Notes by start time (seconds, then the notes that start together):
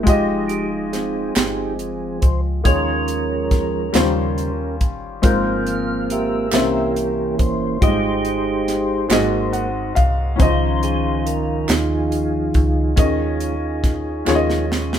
Already playing: C5
0.03 F1 F3 G#3 F4, kick, closed hi-hat
0.07 G#3 D#4 G4 D#5
0.48 G4, closed hi-hat
0.93 C4 D#4 G#4, snare, closed hi-hat
1.35 G1 G#3 D#4 G4, snare, clap, closed hi-hat
1.79 closed hi-hat
2.21 C#2 C5, kick, closed hi-hat
2.64 D#2 D#3 F3 G#3 A#3 C#4 D#4 G#4 A#4 C#5, kick, closed hi-hat
3.08 closed hi-hat
3.51 kick, snare, closed hi-hat
3.93 D#2 C#3 D#3 F3 G3 C#4 F4 C5, snare, clap, closed hi-hat
4.38 closed hi-hat
4.81 G1, kick, closed hi-hat
5.22 G#1 G#2 F3 G#3 A#3 C4 F4 A#4, kick, closed hi-hat
5.67 F5, closed hi-hat
6.10 G4 A#4 E5, closed hi-hat
6.51 C2 C3 E3 A#3 C#4 E4 C5, snare, clap, closed hi-hat
6.96 closed hi-hat
7.38 G1 C5, kick, closed hi-hat
7.81 G#1 G#2 G3 G#3 D#4 F4 G4 C5 D#5, kick, closed hi-hat
7.87 G#3
8.25 closed hi-hat
8.68 snare, closed hi-hat
9.09 G#1 G#2 F#3 A#3 C4 F#4 G#4 D#5, snare, clap, closed hi-hat
9.53 F#5, closed hi-hat
9.95 C2 F5, kick, closed hi-hat
10.36 C#2 C#3 D#3 C#4 D#4 C5, kick, closed hi-hat
10.41 F3 F4 C5 D#5
10.83 G#4, closed hi-hat
11.19 C5
11.26 A#4, closed hi-hat
11.68 D#2 D#4 F4 G#4, snare, clap, closed hi-hat
12.12 closed hi-hat
12.54 C#2, kick, closed hi-hat
12.96 D#2 D#3 F3 G#3 C#4 G#4 A#4 D#5, kick, closed hi-hat
13.40 closed hi-hat
13.84 kick, snare, closed hi-hat
14.25 D#2 D#3 F3 G#3 C#4 F4 G#4 C#5, snare, clap
14.35 D#5
14.50 snare
14.72 snare
14.93 snare